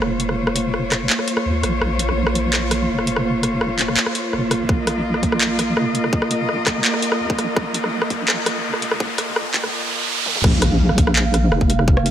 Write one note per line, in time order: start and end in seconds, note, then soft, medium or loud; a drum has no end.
0.00 0.73 F1 medium
0.00 10.40 A#3 medium
0.00 0.54 A#3 medium
0.00 10.40 F4 medium
0.00 4.65 C5 medium
0.00 4.67 C#5 medium
0.00 cross-stick medium
0.20 closed hi-hat medium
0.29 cross-stick medium
0.47 cross-stick medium
0.56 1.08 A#3 medium
0.56 closed hi-hat medium
0.74 1.09 F1 medium
0.74 cross-stick medium
0.92 cross-stick medium
0.92 clap medium
0.92 closed hi-hat medium
1.10 1.62 A#3 medium
1.10 clap loud
1.19 cross-stick medium
1.28 closed hi-hat medium
1.37 cross-stick medium
1.46 1.62 D#2 medium
1.63 1.80 A#1 loud
1.63 2.16 A#3 medium
1.63 cross-stick medium
1.63 closed hi-hat medium
1.81 2.88 A#1 loud
1.81 cross-stick medium
1.99 closed hi-hat medium
2.09 cross-stick medium
2.17 2.70 A#3 medium
2.27 cross-stick medium
2.35 closed hi-hat medium
2.53 cross-stick medium
2.53 clap loud
2.71 3.24 A#3 medium
2.71 cross-stick medium
2.71 closed hi-hat medium
2.89 3.60 F1 medium
2.99 cross-stick medium
3.07 closed hi-hat medium
3.16 cross-stick medium
3.25 3.78 A#3 medium
3.43 cross-stick soft
3.43 closed hi-hat medium
3.61 3.96 F1 medium
3.61 cross-stick medium
3.79 4.31 A#3 medium
3.79 clap medium
3.79 closed hi-hat medium
3.88 cross-stick medium
3.97 clap loud
4.06 cross-stick medium
4.15 closed hi-hat medium
4.33 4.59 F1 medium
4.33 4.68 A#3 medium
4.33 cross-stick soft
4.51 cross-stick medium
4.51 closed hi-hat medium
4.60 4.68 F1 medium
4.69 5.76 A#1 loud
4.69 5.21 A#3 medium
4.69 10.40 A#4 medium
4.69 10.42 D#5 medium
4.69 kick loud
4.69 cross-stick medium
4.69 riser medium
4.87 cross-stick medium
4.87 closed hi-hat medium
5.14 cross-stick soft
5.23 5.75 A#3 medium
5.23 kick medium
5.23 closed hi-hat medium
5.32 cross-stick medium
5.41 clap loud
5.59 cross-stick soft
5.59 closed hi-hat medium
5.77 6.48 F1 medium
5.77 6.29 A#3 medium
5.77 cross-stick medium
5.95 closed hi-hat medium
6.04 cross-stick soft
6.13 kick loud
6.22 cross-stick medium
6.31 6.83 A#3 medium
6.31 closed hi-hat medium
6.49 6.84 F1 loud
6.49 cross-stick medium
6.67 kick medium
6.67 cross-stick medium
6.67 clap medium
6.67 closed hi-hat medium
6.85 7.37 A#3 medium
6.85 clap loud
6.94 cross-stick medium
7.02 closed hi-hat medium
7.12 cross-stick medium
7.20 7.37 D#2 medium
7.30 kick loud
7.38 7.55 A#1 loud
7.38 7.91 A#3 medium
7.38 cross-stick soft
7.38 closed hi-hat medium
7.56 8.63 A#1 loud
7.56 kick loud
7.56 cross-stick medium
7.74 closed hi-hat medium
7.84 cross-stick medium
7.93 8.45 A#3 medium
8.02 cross-stick medium
8.10 kick medium
8.10 closed hi-hat medium
8.28 cross-stick medium
8.28 clap loud
8.46 8.99 A#3 medium
8.46 cross-stick medium
8.46 closed hi-hat medium
8.64 9.35 F1 medium
8.73 cross-stick medium
8.82 closed hi-hat medium
8.91 cross-stick medium
9.00 9.53 A#3 medium
9.00 kick loud
9.18 cross-stick medium
9.18 closed hi-hat medium
9.36 9.71 F1 loud
9.36 cross-stick medium
9.54 9.72 A#3 medium
9.54 kick medium
9.54 clap medium
9.54 closed hi-hat medium
9.64 cross-stick medium
10.26 high tom medium
10.35 mid tom medium
10.44 11.51 A#1 loud
10.44 10.96 A#3 medium
10.44 12.11 F5 medium
10.44 kick loud
10.44 cross-stick medium
10.44 crash loud
10.44 impact medium
10.62 cross-stick medium
10.62 closed hi-hat medium
10.89 cross-stick medium
10.98 11.50 A#3 medium
10.98 kick loud
10.98 closed hi-hat medium
11.07 cross-stick medium
11.16 clap loud
11.34 cross-stick medium
11.34 closed hi-hat medium
11.52 12.11 F1 medium
11.52 12.04 A#3 medium
11.52 cross-stick medium
11.61 kick medium
11.70 closed hi-hat medium
11.79 cross-stick medium
11.88 kick loud
11.97 cross-stick medium
12.06 12.11 A#3 medium
12.06 closed hi-hat medium